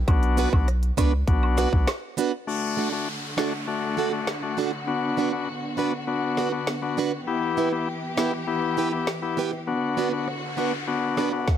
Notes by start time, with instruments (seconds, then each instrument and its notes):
0.08 sub bass B1, tonewheel organ B3 D4 F#4, kick, closed hi-hat, high woodblock
0.23 closed hi-hat
0.37 steel-string acoustic guitar B3 D4 F#4 B4, closed hi-hat, cabasa
0.53 sub bass B1, tonewheel organ B3 D4 F#4, kick, high woodblock
0.68 cross-stick, closed hi-hat
0.83 closed hi-hat
0.97 sub bass C#2, steel-string acoustic guitar B3 D4 F#4 B4, tonewheel organ B3 D4 F#4, kick, closed hi-hat, cabasa, high woodblock
1.27 sub bass B1, tonewheel organ B3 D4 F#4, kick, closed hi-hat
1.43 high woodblock
1.57 steel-string acoustic guitar B3 D4 F#4 B4, snare, closed hi-hat, cabasa
1.72 sub bass B1, tonewheel organ B3 D4 F#4, kick
1.87 cross-stick, snare, closed hi-hat, high woodblock
2.17 steel-string acoustic guitar B3 D4 F#4 B4, closed hi-hat, cabasa
2.47 string section D3 A3 F#4, tonewheel organ A3 D4 F#4, downlifter
2.77 steel-string acoustic guitar A3 D4 F#4 A4
2.92 tonewheel organ A3 D4 F#4
3.37 steel-string acoustic guitar A3 D4 F#4 A4, tonewheel organ A3 D4 F#4, snare
3.67 tonewheel organ A3 D4 F#4
3.97 steel-string acoustic guitar A3 D4 F#4 A4
4.12 tonewheel organ A3 D4 F#4
4.27 snare
4.43 tonewheel organ A3 D4 F#4
4.57 steel-string acoustic guitar A3 D4 F#4 A4
4.72 muted steel-string acoustic guitar stroke
4.87 tonewheel organ B3 D4 F#4, string section B3
5.17 steel-string acoustic guitar B3 D4 F#4 B4
5.32 tonewheel organ B3 D4 F#4
5.77 steel-string acoustic guitar B3 D4 F#4 B4, tonewheel organ B3 D4 F#4
6.07 tonewheel organ B3 D4 F#4
6.37 steel-string acoustic guitar B3 D4 F#4 B4, snare
6.52 tonewheel organ B3 D4 F#4
6.67 snare
6.82 tonewheel organ B3 D4 F#4
6.97 steel-string acoustic guitar B3 D4 F#4 B4
7.27 string section E3 G4, tonewheel organ B3 E4 G4
7.57 steel-string acoustic guitar B3 E4 G4 B4
7.72 tonewheel organ B3 E4 G4
8.17 steel-string acoustic guitar B3 E4 G4 B4, tonewheel organ B3 E4 G4, snare
8.47 tonewheel organ B3 E4 G4
8.77 steel-string acoustic guitar B3 E4 G4 B4
8.92 tonewheel organ B3 E4 G4
9.07 snare
9.22 tonewheel organ B3 E4 G4
9.37 steel-string acoustic guitar B3 E4 G4 B4
9.52 muted steel-string acoustic guitar stroke
9.67 string section D3 F#4, tonewheel organ B3 D4 F#4, noise sweep
9.97 steel-string acoustic guitar B3 D4 F#4 B4
10.12 tonewheel organ B3 D4 F#4
10.28 cross-stick
10.57 steel-string acoustic guitar B3 D4 F#4 B4, tonewheel organ B3 D4 F#4
10.87 tonewheel organ B3 D4 F#4
11.17 steel-string acoustic guitar B3 D4 F#4 B4, snare
11.32 tonewheel organ B3 D4 F#4
11.48 kick, snare